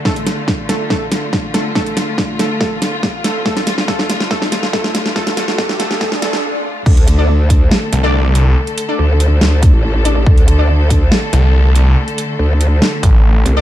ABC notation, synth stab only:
X:1
M:4/4
L:1/16
Q:1/4=141
K:Dm
V:1 name="Synth stab"
z16 | z16 | z16 | z16 |
z3 [DAd] z6 z [DAd]4- [DAd]- | [DAd]3 [DAd] z8 z2 [DAd] z | z3 [DAd] z12 | z12 z3 [DAd] |]